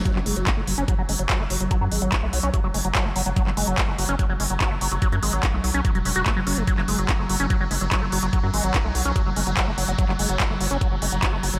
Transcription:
<<
  \new Staff \with { instrumentName = "Acid bass" } { \clef bass \time 4/4 \key fis \minor \tempo 4 = 145 fis16 fis16 gis16 fis16 cis'16 a16 fis16 cis'16 fis16 fis16 gis16 fis16 fis16 a16 fis16 fis16 | fis16 fis16 gis16 fis16 cis'16 a16 fis16 cis'16 fis16 fis16 gis16 fis16 fis16 a16 fis16 fis16 | fis16 fis16 gis16 fis16 cis'16 a16 fis16 cis'16 fis16 fis16 gis16 fis16 fis16 a16 fis16 fis16 | fis16 fis16 gis16 fis16 cis'16 a16 fis16 cis'16 fis16 fis16 fis16 fis'16 a16 fis16 cis'16 gis16 |
fis16 fis16 gis16 fis16 cis'16 a16 fis16 cis'16 fis16 fis16 gis16 fis16 fis16 a16 fis16 fis16 | fis16 fis16 gis16 fis16 cis'16 a16 fis16 cis'16 fis16 fis16 gis16 fis16 fis16 a16 fis16 fis16 | fis16 fis16 gis16 fis16 cis'16 a16 fis16 cis'16 fis16 fis16 gis16 fis16 fis16 a16 fis16 fis16 | }
  \new Staff \with { instrumentName = "Synth drone" } { \clef bass \time 4/4 \key fis \minor fis1~ | fis1~ | fis1~ | fis1~ |
fis1~ | fis1~ | fis1 | }
  \new Staff \with { instrumentName = "Analog synth bass" } { \clef bass \time 4/4 \key fis \minor r16 fis,,16 fis,,16 fis,,16 r16 fis,,16 fis,,16 fis,,16 r16 fis,,16 fis,,16 fis,,16 r16 fis,,16 fis,,16 fis,,16 | r16 fis,16 gis,,16 gis,,16 r16 b,,16 b,,16 b,,16 r16 fis,,16 fis,,16 fis,,16 r16 fis,,16 fis,,16 fis,,16 | r16 fis,,16 fis,,16 fis,,16 r16 fis,,16 fis,,16 fis,,16 r16 fis,,16 fis,,16 fis,,16 r16 fis,,16 fis,,16 fis,,16 | r16 fis,16 gis,,16 gis,,16 r16 b,,16 b,,16 b,,16 r16 e,,16 e,,16 e,,16 r16 fis,,16 fis,,16 fis,,16 |
r16 fis,,16 fis,,16 fis,,16 r16 fis,,16 fis,,16 fis,,16 r16 fis,,16 fis,,16 fis,,16 r16 fis,,16 fis,,16 fis,,16 | r16 fis,16 gis,,16 gis,,16 r16 b,,16 b,,16 b,,16 r16 fis,,16 fis,,16 fis,,16 r16 fis,,16 fis,,16 fis,,16 | r16 fis,,16 fis,,16 fis,,16 r16 fis,,16 fis,,16 fis,,16 r16 fis,,16 fis,,16 fis,,16 r16 fis,,16 fis,,16 fis,,16 | }
  \new DrumStaff \with { instrumentName = "Drums" } \drummode { \time 4/4 <hh bd>16 hc16 hho16 hh16 <hc hh bd>8 hho16 hh16 <hh bd>8 hho16 hh16 <hc hh bd>8 hho16 hh16 | <hh bd>8 hho16 hh16 <hc hh bd>8 hho16 hh16 <hh bd>8 hho16 hh16 <hc hh bd>8 hho16 hh16 | <hh bd>16 hc16 hho16 hh16 <hc hh bd>8 hho16 hh16 <hh bd>8 hho16 hh16 <hc hh bd>8 hho16 hh16 | <hh bd>16 hh16 hho16 hh16 <hc hh bd>8 hho16 hh16 <hh bd>16 hh16 hho16 hh16 <hc hh bd>8 hho16 hh16 |
<hh bd>16 hc16 hho16 hh16 <hc hh bd>8 hho16 hh16 <hh bd>8 hho16 hh16 <hc hh bd>8 hho16 hh16 | <hh bd>8 hho16 hh16 <hc hh bd>8 hho16 hh16 <hh bd>8 hho16 hh16 <hc hh bd>8 hho16 hh16 | <hh bd>16 hc16 hho16 hh16 <hc hh bd>8 hho16 hh16 <hh bd>8 hho16 hh16 <hc hh bd>8 hho16 hh16 | }
>>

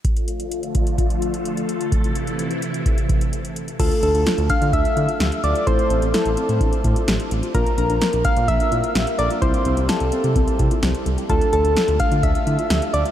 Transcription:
<<
  \new Staff \with { instrumentName = "Soft synth lead" } { \time 4/4 \key d \minor \tempo 4 = 128 r1 | r1 | a'8 a'4 f''8 e''4. d''8 | c''4 a'2~ a'8 r8 |
bes'8 bes'4 f''8 e''4. d''8 | c''4 a'2~ a'8 r8 | a'8 a'4 f''8 e''4. d''8 | }
  \new Staff \with { instrumentName = "Synth arpeggio sound" } { \time 4/4 \key d \minor r1 | r1 | f'8 d'16 d'16 f'8 d'16 f'16 d'8 e'16 f'16 g'8 a'16 f'16 | e'8 c'16 c'16 e'8 c'16 e'16 d'8 e'16 f'16 g'8 a'16 f'16 |
f'8 d'16 d'16 f'8 d'16 f'16 d'8 e'16 f'16 g'8 a'16 f'16 | e'8 c'16 c'16 e'8 c'16 e'16 c'8 e'16 f'16 g'8 a'16 g'16 | f'8 d'16 d'16 f'8 d'16 f'16 d'8 e'16 f'16 g'8 a'16 f'16 | }
  \new Staff \with { instrumentName = "Synth keys" } { \time 4/4 \key d \minor r1 | r1 | <a d' f' a'>1 | <a c' e' a'>1 |
<bes d' f' bes'>2.~ <bes d' f' bes'>8 <bes d' f' bes'>8 | <g c' e' g'>1 | <a d' f' a'>1 | }
  \new Staff \with { instrumentName = "String machine" } { \clef bass \time 4/4 \key d \minor << { <a a'>1~ | <a a'>1 | r1 | r1 |
r1 | r1 | r1 | } \\ { <d f f'>1 | <c e e'>1 | r1 | r1 |
r1 | r1 | r1 | } >> }
  \new Staff \with { instrumentName = "Analog synth bass" } { \clef bass \time 4/4 \key d \minor r1 | r1 | d,16 r16 d,16 d,16 r16 d,16 r16 d16 d,16 r16 d16 r16 d,16 r16 d,16 r16 | a,,16 r16 a,,16 a,,16 r16 a,,16 r16 a,16 a,,16 r16 a,16 r16 a,,16 r16 a,,16 r16 |
bes,,16 r16 bes,,16 bes,,16 r16 bes,,16 r16 bes,16 bes,,16 r16 bes,16 r16 bes,,16 r16 bes,,16 r16 | c,16 r16 c,16 c,16 r16 c,16 r16 c16 c,16 r16 c16 r16 c,16 r16 c,16 r16 | d,16 r16 d,16 d,16 r16 d,16 r16 d16 d,16 r16 d16 r16 d,16 r16 d,16 r16 | }
  \new DrumStaff \with { instrumentName = "Drums" } \drummode { \time 4/4 <hh bd>16 hh16 hh16 hh16 hh16 hh16 <hh bd>16 hh16 <hh bd>16 hh16 hh16 hh16 hh16 hh16 hh16 hh16 | <hh bd>16 hh16 hh16 hh16 hh16 hh16 hh16 hh16 <hh bd>16 hh16 <hh bd>16 hh16 hh16 hh16 hh16 hh16 | <cymc hh bd>16 hh16 hh16 hh16 <hh sn>16 hh16 <hh bd>16 hh16 <hh bd>16 hh16 hh16 hh16 <hh sn>16 hh16 hh16 hh16 | <hh bd>16 hh16 hh16 hh16 <hh sn>16 hh16 hh16 hh16 <hh bd>16 hh16 <hh bd>16 hh16 <hh sn>16 hh16 hh16 hh16 |
<hh bd>16 hh16 hh16 hh16 <hh sn>16 hh16 <hh bd>16 hh16 <hh bd>16 hh16 hh16 hh16 <hh sn>16 hh16 hh16 hh16 | <hh bd>16 hh16 hh16 hh16 <hh sn>16 hh16 hh16 hh16 <hh bd>16 hh16 <hh bd>16 hh16 <hh sn>16 hh16 hh16 hh16 | <hh bd>16 hh16 hh16 hh16 <hh sn>16 hh16 <hh bd>16 hh16 <hh bd>16 hh16 hh16 hh16 <hh sn>16 hh16 hh16 hh16 | }
>>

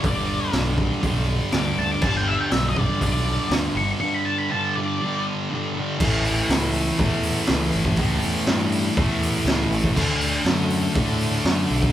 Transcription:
<<
  \new Staff \with { instrumentName = "Lead electric guitar" } { \time 4/4 \key a \mixolydian \tempo 4 = 121 d''4 r2 d'''8 a''16 d'''16 | a''16 g''16 e''16 g''16 e''16 dis''16 d''8 d''4 r8 cis'''16 r16 | cis'''16 b''16 a''16 b''16 a''8 d''4 r4. | r1 |
r1 | r1 | }
  \new Staff \with { instrumentName = "Distorted electric guitar" } { \clef bass \time 4/4 \key a \mixolydian <g, d g>4 <g, d g>8 <d g>8 <g, d g>4 <g, d g>8 <d g>8 | <g, d g>4 <g, d g>8 <d g>8 <g, d g>4 <g, d g>8 <d g>8 | <g, d g>4 <g, d g>8 <d g>8 <g, d g>4 <g, d g>8 <d g>8 | <a, e a>2 <a, e a>2 |
<a, e a>2 <a, e a>2 | <d a d'>2 <d a d'>2 | }
  \new Staff \with { instrumentName = "Fingered electric bass" } { \clef bass \time 4/4 \key a \mixolydian g,,4 b,,4 b,,4 d,8 d,8 | g,,4 b,,4 b,,4 d,8 g,,8 | r1 | a,,4 cis,4 e,4 cis,8 g,,8 |
cis,8 e,8 g,4 e,4 cis,8 a,,8 | d,4 fis,4 a,4 fis,8 b,,8 | }
  \new DrumStaff \with { instrumentName = "Drums" } \drummode { \time 4/4 <hho bd>4 <hho sn>8 bd8 <hho bd>4 <hho sn>4 | <cymc bd>4 <hho sn>8 bd8 <hho bd>4 <hho sn>4 | r4 r4 r4 r4 | <cymc bd>8 hho8 <hho sn>8 hho8 <hho bd>8 hho8 <hho sn>8 hho16 bd16 |
<hho bd>8 hho8 <hho sn>8 hho8 <hho bd>8 hho8 <hho sn>8 hho16 bd16 | <cymc bd>8 hho8 <hho sn>8 hho8 <hho bd>8 hho8 <hho sn>8 hho16 bd16 | }
>>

